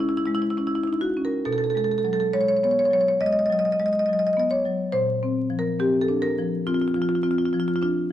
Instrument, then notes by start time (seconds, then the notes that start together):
marimba
Already playing: G#3 C#4
0.00 E4
0.09 E4
0.17 E4
0.26 G#3 E4
0.35 E4
0.42 E4
0.51 E4
0.57 C#4 E4
0.67 E4
0.75 E4
0.83 E4
0.87 D#4
0.93 E4
1.01 F#4
1.17 C#4
1.25 A#4
1.45 B2 A4
1.53 A4
1.58 A4
1.64 A4
1.70 A4
1.75 G#3 A4
1.84 A4
1.91 A4
1.98 A4
2.04 F#3 A4
2.13 A4
2.20 A4
2.33 G#3 C#5
2.41 C#5
2.48 C#5
2.57 C#5
2.63 B3 C#5
2.71 C#5
2.79 C#5
2.85 C#5
2.91 F#3 C#5
3.01 C#5
3.08 C#5
3.21 G#3 D#5
3.26 D#5
3.33 D#5
3.39 D#5
3.46 D#5
3.50 F#3 D#5
3.59 D#5
3.65 D#5
3.72 D#5
3.80 G#3 D#5
3.86 D#5
3.93 D#5
3.99 D#5
4.06 F#3 D#5
4.13 D#5
4.19 D#5
4.27 D#5
4.33 B3 D#5
4.40 D#5
4.51 C#5
4.66 F#3
4.92 A#2 C5
5.23 C4
5.50 F3
5.59 A#4
5.80 C4 G4
6.01 A4
6.08 D4
6.22 A#4
6.38 F3
6.67 C4 F4
6.74 F4
6.81 F4
6.88 F4
6.94 F3 F4
7.02 F4
7.09 F4
7.15 F4
7.23 C4 F4
7.31 F4
7.38 F4
7.45 F4
7.53 F3 F4
7.60 F4
7.68 F4
7.76 F4
7.82 D4 F4